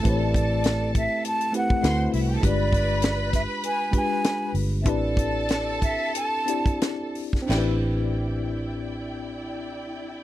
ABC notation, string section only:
X:1
M:4/4
L:1/16
Q:"Swing 16ths" 1/4=96
K:Am
V:1 name="String section"
[Aa]8- [Aa]2 z2 [cc']3/2 z/2 [Ee]/2 [^F^f]/2 [Gg]/2 [Aa]/2 | [Bb]12- [Bb]2 z2 | [Aa]12- [Aa]2 z2 | [Edg]16 |]